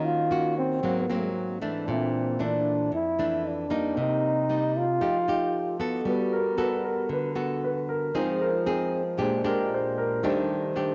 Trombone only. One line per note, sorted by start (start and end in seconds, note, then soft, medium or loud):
0.05 0.57 F4 medium
0.57 1.32 C4 medium
1.90 2.44 C4 medium
2.43 2.93 D4 medium
2.94 3.49 E4 medium
3.48 4.01 D4 medium
4.00 4.79 D#4 loud
4.78 5.81 F4 loud